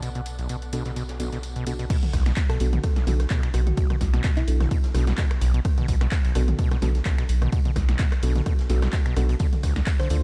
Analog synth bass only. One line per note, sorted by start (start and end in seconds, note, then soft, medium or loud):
0.00 1.88 B1 medium
2.13 2.32 B1 loud
2.60 2.79 B1 medium
3.07 3.26 B1 medium
3.54 3.73 B1 medium
4.01 4.20 B1 loud
4.48 4.66 B1 medium
4.95 5.13 B1 medium
5.42 5.60 B1 medium
5.88 6.07 B1 loud
6.35 6.54 B1 medium
6.82 7.01 B1 medium
7.29 7.48 B1 medium
7.76 7.95 B1 loud
8.23 8.42 B1 medium
8.70 8.88 B1 loud
9.17 9.35 B1 loud
9.63 9.82 D2 loud
10.10 10.23 D2 medium